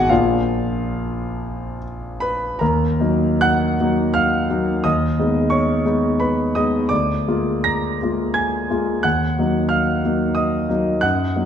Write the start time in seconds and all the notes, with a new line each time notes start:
Already playing: G#1 G#3 B3 D#4 F#4 F#5 G#5
0.09 A#1 F3 A#3 D4 F4 F5
2.20 B4 B5
2.59 D#2 A#4 A#5
3.00 F#3 A#3 D#4
3.41 F#5 F#6
3.80 F#3 A#3 D#4
4.14 F5 F6
4.50 F#3 A#3 D#4
4.84 D#2 D#5 D#6
5.19 G#3 B3 D#4
5.50 C#5 C#6
5.85 G#3 B3 D#4
6.20 B4 B5
6.55 G#3 B3 D#4 D#5 D#6
6.89 D2 D5 D6
7.28 G#3 A#3 F4
7.64 A#5 A#6
8.02 G#3 A#3 F4
8.34 G#5 G#6
8.70 G#3 A#3 F4
9.03 D#2 F#5 F#6
9.38 F#3 A#3 D#4
9.69 F5 F6
10.04 F#3 A#3 D#4
10.35 D#5 D#6
10.69 F#3 A#3 D#4
11.01 F#2 F#5 F#6
11.36 F#3 A#3 D#4